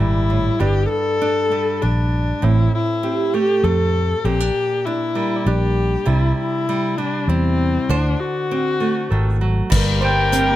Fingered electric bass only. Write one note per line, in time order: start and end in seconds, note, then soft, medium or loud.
0.00 0.48 G#1 loud
0.60 0.85 G1 medium
1.83 2.32 A#1 medium
2.43 2.67 A1 medium
3.64 4.13 F2 medium
4.24 4.49 A#1 medium
5.46 5.96 A#1 loud
6.07 6.32 C2 medium
7.28 7.77 E2 loud
7.89 8.14 D2 medium
9.11 9.61 G#1 medium
9.72 10.56 G1 loud